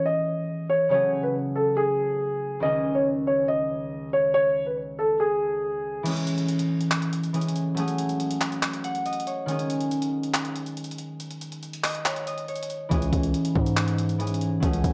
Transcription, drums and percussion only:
6.06 closed hi-hat, crash
6.16 closed hi-hat
6.27 closed hi-hat
6.38 closed hi-hat
6.48 closed hi-hat
6.59 closed hi-hat
6.81 closed hi-hat
6.91 clap, closed hi-hat
7.02 closed hi-hat
7.13 closed hi-hat
7.24 closed hi-hat
7.34 closed hi-hat
7.41 closed hi-hat
7.49 closed hi-hat
7.56 closed hi-hat
7.77 closed hi-hat
7.88 closed hi-hat
7.98 closed hi-hat
8.09 closed hi-hat
8.20 closed hi-hat
8.31 closed hi-hat
8.41 clap
8.52 closed hi-hat
8.63 clap, closed hi-hat
8.73 closed hi-hat
8.84 closed hi-hat
8.95 closed hi-hat
9.06 closed hi-hat
9.13 closed hi-hat
9.20 closed hi-hat
9.27 closed hi-hat
9.48 closed hi-hat
9.59 closed hi-hat
9.70 closed hi-hat
9.81 closed hi-hat
9.91 closed hi-hat
10.02 closed hi-hat
10.23 closed hi-hat
10.34 clap, closed hi-hat
10.45 closed hi-hat
10.56 closed hi-hat
10.66 closed hi-hat
10.77 closed hi-hat
10.84 closed hi-hat
10.91 closed hi-hat
10.98 closed hi-hat
11.20 closed hi-hat
11.31 closed hi-hat
11.41 closed hi-hat
11.52 closed hi-hat
11.63 closed hi-hat
11.73 closed hi-hat
11.84 clap, open hi-hat
11.95 closed hi-hat
12.06 clap, closed hi-hat
12.16 closed hi-hat
12.27 closed hi-hat
12.38 closed hi-hat
12.48 closed hi-hat
12.56 closed hi-hat
12.63 closed hi-hat
12.70 closed hi-hat
12.91 kick, closed hi-hat
13.02 closed hi-hat
13.13 kick, closed hi-hat
13.23 closed hi-hat
13.34 closed hi-hat
13.45 closed hi-hat
13.55 kick
13.66 closed hi-hat
13.77 clap, closed hi-hat
13.88 closed hi-hat
13.98 closed hi-hat
14.09 closed hi-hat
14.20 closed hi-hat
14.27 closed hi-hat
14.34 closed hi-hat
14.41 closed hi-hat
14.63 kick, closed hi-hat
14.73 closed hi-hat
14.84 kick, closed hi-hat

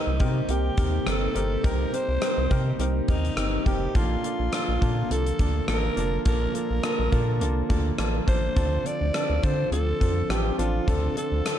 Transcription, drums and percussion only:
0.20 kick, closed hi-hat
0.49 closed hi-hat
0.77 kick, closed hi-hat
1.07 cross-stick, closed hi-hat
1.36 closed hi-hat
1.64 kick, closed hi-hat
1.94 closed hi-hat
2.22 cross-stick, closed hi-hat
2.51 kick, closed hi-hat
2.80 closed hi-hat
3.08 kick, closed hi-hat
3.25 closed hi-hat
3.37 cross-stick, closed hi-hat
3.66 kick, closed hi-hat
3.95 kick, closed hi-hat
4.24 closed hi-hat
4.53 cross-stick, closed hi-hat
4.82 kick, closed hi-hat
5.11 closed hi-hat
5.26 closed hi-hat
5.39 kick, closed hi-hat
5.68 cross-stick, closed hi-hat
5.97 closed hi-hat
6.25 kick, closed hi-hat
6.55 closed hi-hat
6.83 cross-stick, closed hi-hat
7.12 kick, closed hi-hat
7.41 closed hi-hat
7.70 kick, closed hi-hat
7.98 cross-stick, closed hi-hat
8.28 kick, closed hi-hat
8.56 kick, closed hi-hat
8.86 closed hi-hat
9.14 cross-stick, closed hi-hat
9.43 kick, closed hi-hat
9.72 closed hi-hat
10.01 kick, closed hi-hat
10.30 cross-stick, closed hi-hat
10.59 closed hi-hat
10.88 kick, closed hi-hat
11.17 closed hi-hat
11.46 cross-stick, closed hi-hat

